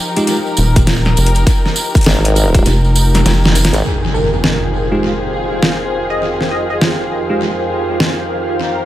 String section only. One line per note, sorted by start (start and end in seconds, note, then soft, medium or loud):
0.00 3.81 F3 medium
0.00 3.81 D#4 medium
0.00 3.81 G4 medium
0.00 3.84 A#4 medium
3.84 8.85 F2 medium
3.84 8.85 D#3 medium
3.84 8.85 G4 medium
3.84 8.59 G#4 medium
8.59 8.85 A#4 medium